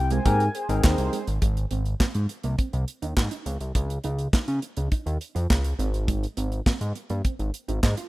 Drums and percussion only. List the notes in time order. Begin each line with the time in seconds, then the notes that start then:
0.10 closed hi-hat
0.26 kick, closed hi-hat
0.40 closed hi-hat
0.55 closed hi-hat
0.69 closed hi-hat
0.84 kick, snare, clap
0.98 closed hi-hat
1.13 closed hi-hat
1.27 closed hi-hat
1.42 kick, closed hi-hat
1.57 closed hi-hat
1.71 closed hi-hat
1.86 closed hi-hat
2.00 kick, snare, clap
2.15 closed hi-hat
2.29 closed hi-hat
2.43 closed hi-hat
2.58 kick, closed hi-hat
2.73 closed hi-hat
2.88 closed hi-hat
3.02 closed hi-hat
3.17 kick, snare, clap
3.31 closed hi-hat
3.46 closed hi-hat
3.61 closed hi-hat
3.75 kick, closed hi-hat
3.90 closed hi-hat
4.04 closed hi-hat
4.19 closed hi-hat
4.33 kick, snare, clap
4.48 closed hi-hat
4.62 closed hi-hat
4.77 closed hi-hat
4.92 kick, closed hi-hat
5.07 closed hi-hat
5.21 closed hi-hat
5.36 closed hi-hat
5.50 kick, snare, clap
5.64 closed hi-hat
5.79 closed hi-hat
5.94 closed hi-hat
6.08 kick, closed hi-hat
6.23 closed hi-hat
6.37 closed hi-hat
6.52 closed hi-hat
6.66 kick, snare, clap
6.81 closed hi-hat
6.95 closed hi-hat
7.10 closed hi-hat
7.25 kick, closed hi-hat
7.39 closed hi-hat
7.54 closed hi-hat
7.69 closed hi-hat
7.83 kick, snare, clap
7.97 closed hi-hat